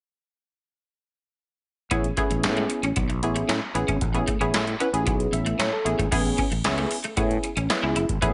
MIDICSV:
0, 0, Header, 1, 6, 480
1, 0, Start_track
1, 0, Key_signature, 3, "major"
1, 0, Tempo, 526316
1, 1742, Time_signature, 4, 2, 24, 8
1, 7600, End_track
2, 0, Start_track
2, 0, Title_t, "Analog polysynth"
2, 0, Program_c, 0, 90
2, 1739, Note_on_c, 0, 59, 90
2, 1742, Note_on_c, 0, 61, 87
2, 1744, Note_on_c, 0, 64, 89
2, 1746, Note_on_c, 0, 68, 103
2, 1886, Note_off_c, 0, 59, 0
2, 1887, Note_off_c, 0, 61, 0
2, 1889, Note_off_c, 0, 64, 0
2, 1890, Note_off_c, 0, 68, 0
2, 1979, Note_on_c, 0, 59, 94
2, 1982, Note_on_c, 0, 61, 88
2, 1984, Note_on_c, 0, 64, 82
2, 1987, Note_on_c, 0, 68, 97
2, 2563, Note_off_c, 0, 59, 0
2, 2565, Note_off_c, 0, 61, 0
2, 2566, Note_off_c, 0, 64, 0
2, 2567, Note_off_c, 0, 68, 0
2, 2944, Note_on_c, 0, 59, 83
2, 2946, Note_on_c, 0, 61, 79
2, 2948, Note_on_c, 0, 64, 79
2, 2952, Note_on_c, 0, 68, 94
2, 3234, Note_off_c, 0, 59, 0
2, 3235, Note_off_c, 0, 61, 0
2, 3236, Note_off_c, 0, 64, 0
2, 3238, Note_off_c, 0, 68, 0
2, 3415, Note_on_c, 0, 59, 90
2, 3418, Note_on_c, 0, 61, 77
2, 3420, Note_on_c, 0, 64, 77
2, 3423, Note_on_c, 0, 68, 96
2, 3637, Note_off_c, 0, 59, 0
2, 3639, Note_off_c, 0, 61, 0
2, 3640, Note_off_c, 0, 64, 0
2, 3641, Note_off_c, 0, 68, 0
2, 3778, Note_on_c, 0, 59, 92
2, 3780, Note_on_c, 0, 61, 79
2, 3783, Note_on_c, 0, 64, 78
2, 3786, Note_on_c, 0, 68, 96
2, 3926, Note_off_c, 0, 59, 0
2, 3926, Note_off_c, 0, 61, 0
2, 3928, Note_off_c, 0, 64, 0
2, 3930, Note_off_c, 0, 68, 0
2, 4019, Note_on_c, 0, 59, 89
2, 4020, Note_on_c, 0, 61, 77
2, 4024, Note_on_c, 0, 64, 85
2, 4026, Note_on_c, 0, 68, 96
2, 4239, Note_off_c, 0, 59, 0
2, 4240, Note_off_c, 0, 61, 0
2, 4241, Note_off_c, 0, 64, 0
2, 4242, Note_off_c, 0, 68, 0
2, 4379, Note_on_c, 0, 59, 89
2, 4381, Note_on_c, 0, 61, 86
2, 4385, Note_on_c, 0, 64, 82
2, 4388, Note_on_c, 0, 71, 107
2, 4453, Note_off_c, 0, 59, 0
2, 4454, Note_off_c, 0, 61, 0
2, 4456, Note_off_c, 0, 64, 0
2, 4458, Note_off_c, 0, 71, 0
2, 4499, Note_on_c, 0, 59, 86
2, 4500, Note_on_c, 0, 61, 79
2, 4504, Note_on_c, 0, 64, 75
2, 4507, Note_on_c, 0, 68, 96
2, 4859, Note_on_c, 0, 76, 67
2, 4865, Note_off_c, 0, 68, 0
2, 5083, Note_off_c, 0, 59, 0
2, 5084, Note_off_c, 0, 61, 0
2, 5086, Note_off_c, 0, 64, 0
2, 5089, Note_off_c, 0, 76, 0
2, 5101, Note_on_c, 0, 73, 68
2, 5215, Note_off_c, 0, 73, 0
2, 5223, Note_on_c, 0, 69, 70
2, 5334, Note_on_c, 0, 59, 80
2, 5335, Note_on_c, 0, 61, 73
2, 5336, Note_on_c, 0, 64, 81
2, 5342, Note_on_c, 0, 68, 93
2, 5451, Note_off_c, 0, 69, 0
2, 5530, Note_off_c, 0, 59, 0
2, 5530, Note_off_c, 0, 61, 0
2, 5531, Note_off_c, 0, 64, 0
2, 5534, Note_off_c, 0, 68, 0
2, 5576, Note_on_c, 0, 59, 103
2, 5579, Note_on_c, 0, 61, 95
2, 5581, Note_on_c, 0, 64, 91
2, 5582, Note_on_c, 0, 68, 115
2, 5870, Note_off_c, 0, 59, 0
2, 5872, Note_off_c, 0, 61, 0
2, 5873, Note_off_c, 0, 64, 0
2, 5873, Note_off_c, 0, 68, 0
2, 6059, Note_on_c, 0, 59, 92
2, 6061, Note_on_c, 0, 61, 85
2, 6065, Note_on_c, 0, 64, 91
2, 6067, Note_on_c, 0, 68, 105
2, 6352, Note_off_c, 0, 59, 0
2, 6353, Note_off_c, 0, 61, 0
2, 6355, Note_off_c, 0, 64, 0
2, 6356, Note_off_c, 0, 68, 0
2, 6535, Note_on_c, 0, 59, 81
2, 6537, Note_on_c, 0, 61, 78
2, 6541, Note_on_c, 0, 64, 73
2, 6544, Note_on_c, 0, 68, 95
2, 6830, Note_off_c, 0, 59, 0
2, 6831, Note_off_c, 0, 61, 0
2, 6833, Note_off_c, 0, 64, 0
2, 6834, Note_off_c, 0, 68, 0
2, 7019, Note_on_c, 0, 59, 94
2, 7021, Note_on_c, 0, 61, 80
2, 7022, Note_on_c, 0, 64, 85
2, 7024, Note_on_c, 0, 68, 103
2, 7312, Note_off_c, 0, 59, 0
2, 7313, Note_off_c, 0, 61, 0
2, 7314, Note_off_c, 0, 64, 0
2, 7314, Note_off_c, 0, 68, 0
2, 7492, Note_on_c, 0, 59, 102
2, 7496, Note_on_c, 0, 61, 97
2, 7497, Note_on_c, 0, 64, 93
2, 7500, Note_on_c, 0, 68, 115
2, 7600, Note_off_c, 0, 59, 0
2, 7600, Note_off_c, 0, 61, 0
2, 7600, Note_off_c, 0, 64, 0
2, 7600, Note_off_c, 0, 68, 0
2, 7600, End_track
3, 0, Start_track
3, 0, Title_t, "Clean electric guitar"
3, 0, Program_c, 1, 27
3, 1744, Note_on_c, 1, 59, 83
3, 1827, Note_off_c, 1, 59, 0
3, 1986, Note_on_c, 1, 57, 75
3, 2068, Note_off_c, 1, 57, 0
3, 2345, Note_on_c, 1, 56, 71
3, 2428, Note_off_c, 1, 56, 0
3, 2587, Note_on_c, 1, 61, 76
3, 2669, Note_off_c, 1, 61, 0
3, 2704, Note_on_c, 1, 59, 82
3, 2787, Note_off_c, 1, 59, 0
3, 3060, Note_on_c, 1, 57, 64
3, 3145, Note_off_c, 1, 57, 0
3, 3180, Note_on_c, 1, 61, 79
3, 3265, Note_off_c, 1, 61, 0
3, 3541, Note_on_c, 1, 61, 75
3, 3625, Note_off_c, 1, 61, 0
3, 3900, Note_on_c, 1, 57, 70
3, 3984, Note_off_c, 1, 57, 0
3, 4019, Note_on_c, 1, 61, 73
3, 4104, Note_off_c, 1, 61, 0
3, 4382, Note_on_c, 1, 61, 68
3, 4466, Note_off_c, 1, 61, 0
3, 4620, Note_on_c, 1, 59, 86
3, 4705, Note_off_c, 1, 59, 0
3, 4980, Note_on_c, 1, 57, 67
3, 5065, Note_off_c, 1, 57, 0
3, 5101, Note_on_c, 1, 61, 75
3, 5185, Note_off_c, 1, 61, 0
3, 5461, Note_on_c, 1, 57, 70
3, 5545, Note_off_c, 1, 57, 0
3, 5581, Note_on_c, 1, 57, 80
3, 5665, Note_off_c, 1, 57, 0
3, 5823, Note_on_c, 1, 61, 72
3, 5907, Note_off_c, 1, 61, 0
3, 6182, Note_on_c, 1, 57, 70
3, 6266, Note_off_c, 1, 57, 0
3, 6423, Note_on_c, 1, 57, 77
3, 6507, Note_off_c, 1, 57, 0
3, 6543, Note_on_c, 1, 59, 79
3, 6626, Note_off_c, 1, 59, 0
3, 6905, Note_on_c, 1, 61, 73
3, 6988, Note_off_c, 1, 61, 0
3, 7141, Note_on_c, 1, 64, 77
3, 7225, Note_off_c, 1, 64, 0
3, 7259, Note_on_c, 1, 64, 88
3, 7344, Note_off_c, 1, 64, 0
3, 7499, Note_on_c, 1, 57, 84
3, 7584, Note_off_c, 1, 57, 0
3, 7600, End_track
4, 0, Start_track
4, 0, Title_t, "Fretless electric bass"
4, 0, Program_c, 2, 35
4, 1742, Note_on_c, 2, 33, 93
4, 1921, Note_off_c, 2, 33, 0
4, 2100, Note_on_c, 2, 33, 84
4, 2224, Note_on_c, 2, 45, 88
4, 2237, Note_off_c, 2, 33, 0
4, 2402, Note_off_c, 2, 45, 0
4, 2579, Note_on_c, 2, 33, 71
4, 2670, Note_off_c, 2, 33, 0
4, 2703, Note_on_c, 2, 35, 87
4, 2936, Note_off_c, 2, 35, 0
4, 2936, Note_on_c, 2, 33, 81
4, 3118, Note_off_c, 2, 33, 0
4, 3179, Note_on_c, 2, 45, 91
4, 3270, Note_off_c, 2, 45, 0
4, 3417, Note_on_c, 2, 33, 91
4, 3509, Note_off_c, 2, 33, 0
4, 3540, Note_on_c, 2, 32, 89
4, 3631, Note_off_c, 2, 32, 0
4, 3661, Note_on_c, 2, 33, 94
4, 3841, Note_off_c, 2, 33, 0
4, 4015, Note_on_c, 2, 33, 86
4, 4107, Note_off_c, 2, 33, 0
4, 4139, Note_on_c, 2, 45, 88
4, 4320, Note_off_c, 2, 45, 0
4, 4499, Note_on_c, 2, 33, 80
4, 4621, Note_off_c, 2, 33, 0
4, 4621, Note_on_c, 2, 35, 91
4, 4801, Note_off_c, 2, 35, 0
4, 4855, Note_on_c, 2, 33, 92
4, 5037, Note_off_c, 2, 33, 0
4, 5097, Note_on_c, 2, 45, 99
4, 5189, Note_off_c, 2, 45, 0
4, 5337, Note_on_c, 2, 33, 90
4, 5428, Note_off_c, 2, 33, 0
4, 5462, Note_on_c, 2, 32, 79
4, 5552, Note_off_c, 2, 32, 0
4, 5582, Note_on_c, 2, 33, 94
4, 5761, Note_off_c, 2, 33, 0
4, 5939, Note_on_c, 2, 33, 89
4, 6030, Note_off_c, 2, 33, 0
4, 6059, Note_on_c, 2, 37, 90
4, 6239, Note_off_c, 2, 37, 0
4, 6540, Note_on_c, 2, 45, 101
4, 6720, Note_off_c, 2, 45, 0
4, 6900, Note_on_c, 2, 33, 99
4, 6990, Note_off_c, 2, 33, 0
4, 7142, Note_on_c, 2, 37, 92
4, 7231, Note_off_c, 2, 37, 0
4, 7260, Note_on_c, 2, 30, 92
4, 7350, Note_off_c, 2, 30, 0
4, 7378, Note_on_c, 2, 32, 87
4, 7469, Note_off_c, 2, 32, 0
4, 7498, Note_on_c, 2, 33, 101
4, 7600, Note_off_c, 2, 33, 0
4, 7600, End_track
5, 0, Start_track
5, 0, Title_t, "Muted clean electric guitar strokes"
5, 2105, Note_on_c, 9, 29, 40
5, 2196, Note_off_c, 9, 29, 0
5, 2464, Note_on_c, 9, 29, 42
5, 2555, Note_off_c, 9, 29, 0
5, 2823, Note_on_c, 9, 29, 42
5, 2914, Note_off_c, 9, 29, 0
5, 3421, Note_on_c, 9, 29, 44
5, 3512, Note_off_c, 9, 29, 0
5, 3780, Note_on_c, 9, 29, 41
5, 3871, Note_off_c, 9, 29, 0
5, 4859, Note_on_c, 9, 29, 44
5, 4950, Note_off_c, 9, 29, 0
5, 5343, Note_on_c, 9, 29, 42
5, 5434, Note_off_c, 9, 29, 0
5, 5945, Note_on_c, 9, 29, 44
5, 6036, Note_off_c, 9, 29, 0
5, 6304, Note_on_c, 9, 29, 43
5, 6395, Note_off_c, 9, 29, 0
5, 6787, Note_on_c, 9, 29, 45
5, 6878, Note_off_c, 9, 29, 0
5, 7024, Note_on_c, 9, 29, 45
5, 7115, Note_off_c, 9, 29, 0
5, 7600, End_track
6, 0, Start_track
6, 0, Title_t, "Drums"
6, 1742, Note_on_c, 9, 36, 111
6, 1742, Note_on_c, 9, 42, 89
6, 1833, Note_off_c, 9, 36, 0
6, 1833, Note_off_c, 9, 42, 0
6, 1863, Note_on_c, 9, 42, 34
6, 1954, Note_off_c, 9, 42, 0
6, 1980, Note_on_c, 9, 42, 66
6, 1982, Note_on_c, 9, 36, 89
6, 2071, Note_off_c, 9, 42, 0
6, 2073, Note_off_c, 9, 36, 0
6, 2103, Note_on_c, 9, 42, 49
6, 2194, Note_off_c, 9, 42, 0
6, 2221, Note_on_c, 9, 42, 97
6, 2224, Note_on_c, 9, 38, 109
6, 2233, Note_on_c, 9, 39, 90
6, 2312, Note_off_c, 9, 42, 0
6, 2315, Note_off_c, 9, 38, 0
6, 2324, Note_off_c, 9, 39, 0
6, 2341, Note_on_c, 9, 42, 34
6, 2433, Note_off_c, 9, 42, 0
6, 2459, Note_on_c, 9, 42, 71
6, 2550, Note_off_c, 9, 42, 0
6, 2584, Note_on_c, 9, 42, 54
6, 2675, Note_off_c, 9, 42, 0
6, 2700, Note_on_c, 9, 42, 86
6, 2703, Note_on_c, 9, 36, 109
6, 2791, Note_off_c, 9, 42, 0
6, 2794, Note_off_c, 9, 36, 0
6, 2824, Note_on_c, 9, 42, 36
6, 2915, Note_off_c, 9, 42, 0
6, 2944, Note_on_c, 9, 42, 68
6, 3035, Note_off_c, 9, 42, 0
6, 3062, Note_on_c, 9, 42, 46
6, 3153, Note_off_c, 9, 42, 0
6, 3184, Note_on_c, 9, 42, 97
6, 3185, Note_on_c, 9, 38, 108
6, 3194, Note_on_c, 9, 39, 84
6, 3276, Note_off_c, 9, 38, 0
6, 3276, Note_off_c, 9, 42, 0
6, 3285, Note_off_c, 9, 39, 0
6, 3421, Note_on_c, 9, 42, 69
6, 3512, Note_off_c, 9, 42, 0
6, 3542, Note_on_c, 9, 36, 82
6, 3543, Note_on_c, 9, 42, 50
6, 3633, Note_off_c, 9, 36, 0
6, 3634, Note_off_c, 9, 42, 0
6, 3659, Note_on_c, 9, 42, 85
6, 3661, Note_on_c, 9, 36, 113
6, 3751, Note_off_c, 9, 42, 0
6, 3752, Note_off_c, 9, 36, 0
6, 3781, Note_on_c, 9, 42, 33
6, 3872, Note_off_c, 9, 42, 0
6, 3899, Note_on_c, 9, 42, 70
6, 3900, Note_on_c, 9, 36, 85
6, 3990, Note_off_c, 9, 42, 0
6, 3991, Note_off_c, 9, 36, 0
6, 4022, Note_on_c, 9, 42, 49
6, 4114, Note_off_c, 9, 42, 0
6, 4139, Note_on_c, 9, 42, 99
6, 4143, Note_on_c, 9, 38, 114
6, 4151, Note_on_c, 9, 39, 89
6, 4230, Note_off_c, 9, 42, 0
6, 4234, Note_off_c, 9, 38, 0
6, 4242, Note_off_c, 9, 39, 0
6, 4262, Note_on_c, 9, 42, 33
6, 4353, Note_off_c, 9, 42, 0
6, 4381, Note_on_c, 9, 42, 73
6, 4472, Note_off_c, 9, 42, 0
6, 4504, Note_on_c, 9, 42, 56
6, 4595, Note_off_c, 9, 42, 0
6, 4620, Note_on_c, 9, 42, 81
6, 4622, Note_on_c, 9, 36, 117
6, 4711, Note_off_c, 9, 42, 0
6, 4713, Note_off_c, 9, 36, 0
6, 4743, Note_on_c, 9, 42, 35
6, 4834, Note_off_c, 9, 42, 0
6, 4862, Note_on_c, 9, 42, 73
6, 4953, Note_off_c, 9, 42, 0
6, 4981, Note_on_c, 9, 42, 45
6, 5072, Note_off_c, 9, 42, 0
6, 5103, Note_on_c, 9, 42, 94
6, 5104, Note_on_c, 9, 38, 104
6, 5113, Note_on_c, 9, 39, 83
6, 5195, Note_off_c, 9, 38, 0
6, 5195, Note_off_c, 9, 42, 0
6, 5204, Note_off_c, 9, 39, 0
6, 5343, Note_on_c, 9, 42, 70
6, 5435, Note_off_c, 9, 42, 0
6, 5463, Note_on_c, 9, 36, 84
6, 5467, Note_on_c, 9, 42, 48
6, 5554, Note_off_c, 9, 36, 0
6, 5558, Note_off_c, 9, 42, 0
6, 5582, Note_on_c, 9, 36, 110
6, 5582, Note_on_c, 9, 42, 92
6, 5582, Note_on_c, 9, 49, 88
6, 5673, Note_off_c, 9, 36, 0
6, 5673, Note_off_c, 9, 42, 0
6, 5673, Note_off_c, 9, 49, 0
6, 5704, Note_on_c, 9, 42, 35
6, 5795, Note_off_c, 9, 42, 0
6, 5819, Note_on_c, 9, 42, 70
6, 5821, Note_on_c, 9, 36, 94
6, 5911, Note_off_c, 9, 42, 0
6, 5912, Note_off_c, 9, 36, 0
6, 5943, Note_on_c, 9, 42, 54
6, 6035, Note_off_c, 9, 42, 0
6, 6059, Note_on_c, 9, 42, 101
6, 6063, Note_on_c, 9, 38, 117
6, 6071, Note_on_c, 9, 39, 96
6, 6150, Note_off_c, 9, 42, 0
6, 6154, Note_off_c, 9, 38, 0
6, 6162, Note_off_c, 9, 39, 0
6, 6181, Note_on_c, 9, 42, 36
6, 6272, Note_off_c, 9, 42, 0
6, 6299, Note_on_c, 9, 46, 80
6, 6390, Note_off_c, 9, 46, 0
6, 6419, Note_on_c, 9, 42, 53
6, 6511, Note_off_c, 9, 42, 0
6, 6538, Note_on_c, 9, 42, 89
6, 6541, Note_on_c, 9, 36, 113
6, 6630, Note_off_c, 9, 42, 0
6, 6632, Note_off_c, 9, 36, 0
6, 6665, Note_on_c, 9, 42, 37
6, 6756, Note_off_c, 9, 42, 0
6, 6781, Note_on_c, 9, 42, 72
6, 6872, Note_off_c, 9, 42, 0
6, 6902, Note_on_c, 9, 42, 52
6, 6993, Note_off_c, 9, 42, 0
6, 7022, Note_on_c, 9, 42, 102
6, 7023, Note_on_c, 9, 38, 115
6, 7031, Note_on_c, 9, 39, 86
6, 7113, Note_off_c, 9, 42, 0
6, 7114, Note_off_c, 9, 38, 0
6, 7122, Note_off_c, 9, 39, 0
6, 7259, Note_on_c, 9, 42, 75
6, 7350, Note_off_c, 9, 42, 0
6, 7380, Note_on_c, 9, 36, 85
6, 7380, Note_on_c, 9, 42, 51
6, 7471, Note_off_c, 9, 36, 0
6, 7471, Note_off_c, 9, 42, 0
6, 7499, Note_on_c, 9, 36, 119
6, 7499, Note_on_c, 9, 42, 91
6, 7590, Note_off_c, 9, 36, 0
6, 7590, Note_off_c, 9, 42, 0
6, 7600, End_track
0, 0, End_of_file